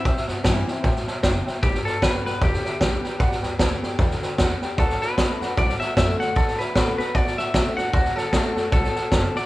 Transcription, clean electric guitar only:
X:1
M:4/4
L:1/8
Q:"Swing" 1/4=152
K:G
V:1 name="Clean electric guitar"
e z6 z | G A B B G4- | G6 z2 | A B3 d e e f |
A B2 B d e2 f | F A3 A3 d |]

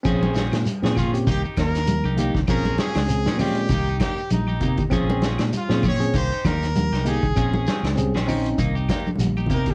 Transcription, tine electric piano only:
X:1
M:4/4
L:1/16
Q:"Swing 16ths" 1/4=98
K:Bbdor
V:1 name="Tine electric piano"
[CDA]2 z3 [CDA] z [CDG] z6 [B,EG] z | [CDA]2 z2 [CDA] z [A,CD]2 z6 z [EG] | [CDA]2 z3 [CDA] z [CDA] z6 [B,EG] z | [CDA]2 z2 [CDA] z [CDE]2 z6 z [EG] |]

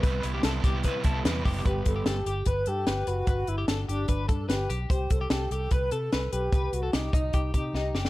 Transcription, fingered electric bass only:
X:1
M:4/4
L:1/16
Q:1/4=148
K:G
V:1 name="Fingered electric bass" clef=bass
C,,2 C,,2 C,,2 C,,3 z C,,2 E,,2 F,,,2 | G,,,2 G,,,2 G,,,2 G,,,2 G,,,2 G,,2 G,,,2 F,,,2 | G,,,2 G,,,2 G,,,2 G,,,2 G,,,2 G,,2 G,,,2 B,,,2 | C,,2 C,,2 C,,2 C,,2 C,,2 C,2 C,,2 B,,,2 |
C,,2 C,,2 C,,2 C,,2 C,,2 C,2 C,,2 F,,,2 |]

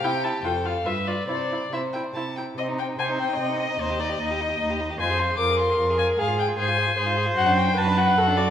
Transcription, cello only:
X:1
M:3/4
L:1/8
Q:1/4=149
K:C
V:1 name="Cello" clef=bass
C,2 F,,2 G,,2 | C,2 C,2 C,2 | [K:Fdor] C,2 C,2 C,2 | E,,2 E,,2 E,,2 |
F,,2 F,,2 F,,2 | A,,2 A,,2 A,,2 | [K:Dmix] F,,2 F,,2 F,,2 |]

